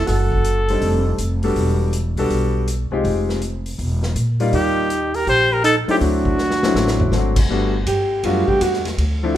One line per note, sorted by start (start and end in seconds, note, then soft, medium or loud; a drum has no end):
0.06 0.78 F#1 medium
0.06 0.77 F#4 medium
0.06 1.40 A4 medium
0.06 kick soft
0.06 snare soft
0.06 open hi-hat soft
0.32 kick medium
0.45 closed hi-hat medium
0.69 1.17 G3 medium
0.69 1.17 C4 medium
0.69 1.17 D4 soft
0.69 1.17 D#4 medium
0.69 1.17 A4 medium
0.69 open hi-hat soft
0.82 1.16 F1 medium
0.82 kick soft
0.82 open hi-hat soft
1.18 1.53 F1 medium
1.18 closed hi-hat medium
1.43 1.91 G3 medium
1.43 1.91 B3 medium
1.43 1.91 D4 medium
1.43 1.91 F#4 medium
1.43 1.91 A4 medium
1.43 open hi-hat soft
1.56 2.13 E1 medium
1.56 kick soft
1.56 open hi-hat soft
1.93 closed hi-hat medium
2.16 2.29 B1 medium
2.16 2.65 G3 medium
2.16 2.65 B3 medium
2.16 2.65 D4 medium
2.16 2.65 F#4 medium
2.16 2.66 A4 medium
2.16 open hi-hat soft
2.30 2.87 B1 medium
2.30 kick soft
2.30 open hi-hat soft
2.68 closed hi-hat medium
2.91 3.03 C2 medium
2.91 3.39 G#3 medium
2.91 3.39 C4 medium
2.91 3.40 D#4 medium
2.91 3.40 F4 medium
2.91 3.40 G4 medium
3.04 3.75 F1 medium
3.04 kick soft
3.04 open hi-hat soft
3.29 snare soft
3.42 closed hi-hat medium
3.66 open hi-hat soft
3.78 4.13 E1 medium
3.78 kick soft
3.78 open hi-hat soft
4.03 snare medium
4.15 4.50 A#2 medium
4.15 closed hi-hat medium
4.40 4.87 G3 medium
4.40 4.88 A#3 medium
4.40 4.88 D#4 medium
4.40 4.88 F4 medium
4.40 4.88 D5 medium
4.40 open hi-hat soft
4.53 5.23 D#2 medium
4.53 5.16 D#4 medium
4.53 5.17 G4 medium
4.53 kick soft
4.53 open hi-hat soft
4.90 closed hi-hat medium
5.14 5.26 G4 medium
5.14 5.28 A#4 medium
5.14 open hi-hat soft
5.27 5.84 A#1 medium
5.27 5.51 G4 medium
5.27 5.54 C5 loud
5.27 kick soft
5.27 open hi-hat soft
5.51 5.63 G4 medium
5.51 5.64 A#4 medium
5.64 5.75 D#4 medium
5.64 5.75 A4 loud
5.64 closed hi-hat medium
5.87 6.36 F#3 medium
5.87 6.36 A3 medium
5.87 6.36 C4 medium
5.87 6.36 D4 medium
5.87 5.94 D#4 medium
5.87 6.36 E4 medium
5.87 5.96 G4 medium
5.87 muted upright bass stroke soft
5.87 open hi-hat soft
6.01 6.72 D2 medium
6.01 7.33 D4 medium
6.01 7.34 F#4 medium
6.01 kick soft
6.01 open hi-hat soft
6.25 kick medium
6.38 snare soft
6.51 snare medium
6.63 7.11 F#3 medium
6.63 7.11 A3 medium
6.63 7.11 C4 medium
6.63 7.11 D4 medium
6.63 7.11 E4 medium
6.63 snare medium
6.74 7.09 A1 medium
6.74 snare medium
6.87 snare medium
7.00 floor tom medium
7.11 7.47 G#1 medium
7.11 7.35 F#3 medium
7.11 7.35 A3 medium
7.11 7.35 C4 medium
7.11 7.35 D4 medium
7.11 7.35 F#4 medium
7.11 snare medium
7.36 kick medium
7.36 crash medium
7.49 7.86 G1 medium
7.49 7.72 G3 medium
7.49 7.72 A3 medium
7.49 7.72 B3 medium
7.49 7.72 D4 medium
7.49 7.72 F#4 medium
7.49 kick soft
7.86 8.23 G2 medium
7.86 8.26 G4 medium
7.86 kick soft
7.86 hi-hat pedal soft
7.86 ride medium
8.23 8.46 F#2 medium
8.23 8.81 G3 medium
8.23 8.81 A3 medium
8.23 8.82 B3 medium
8.23 8.81 D4 medium
8.23 8.49 F4 medium
8.23 8.82 F#4 medium
8.23 kick soft
8.23 ride medium
8.47 8.63 G4 loud
8.47 muted upright bass stroke soft
8.47 kick medium
8.61 8.97 E2 medium
8.61 8.86 F#4 medium
8.61 kick soft
8.61 hi-hat pedal soft
8.61 ride medium
8.74 snare soft
8.85 snare soft
8.85 ride soft
8.98 9.34 D2 medium
8.98 kick soft
8.98 ride medium
9.23 9.37 F3 medium
9.23 9.37 A3 medium
9.23 9.37 C4 medium
9.23 9.37 D4 medium
9.23 9.37 E4 medium